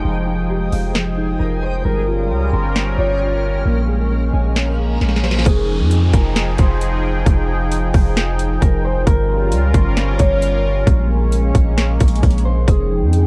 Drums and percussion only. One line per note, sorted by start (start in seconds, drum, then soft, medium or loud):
0.72 open hi-hat medium
0.95 snare loud
2.75 snare loud
4.56 snare loud
5.01 snare medium
5.09 snare medium
5.16 snare medium
5.24 snare medium
5.31 snare medium
5.39 snare medium
5.46 kick loud
5.46 closed hi-hat medium
5.91 closed hi-hat medium
6.13 kick loud
6.13 closed hi-hat medium
6.36 snare loud
6.36 closed hi-hat medium
6.58 kick medium
6.58 closed hi-hat medium
6.81 closed hi-hat medium
7.26 kick loud
7.26 closed hi-hat medium
7.72 closed hi-hat medium
7.94 kick loud
7.94 open hi-hat medium
8.17 snare loud
8.17 closed hi-hat medium
8.39 closed hi-hat medium
8.62 kick medium
8.62 closed hi-hat medium
9.07 kick loud
9.07 closed hi-hat medium
9.52 closed hi-hat medium
9.75 kick loud
9.75 closed hi-hat medium
9.97 snare loud
9.97 closed hi-hat medium
10.19 kick medium
10.19 closed hi-hat medium
10.42 closed hi-hat medium
10.87 kick loud
10.87 closed hi-hat medium
11.33 closed hi-hat medium
11.55 kick medium
11.55 closed hi-hat medium
11.78 snare loud
11.78 closed hi-hat medium
12.00 kick loud
12.00 closed hi-hat medium
12.08 closed hi-hat medium
12.15 closed hi-hat medium
12.23 kick medium
12.23 closed hi-hat medium
12.30 closed hi-hat soft
12.38 closed hi-hat soft
12.68 kick loud
12.68 closed hi-hat medium
13.13 closed hi-hat medium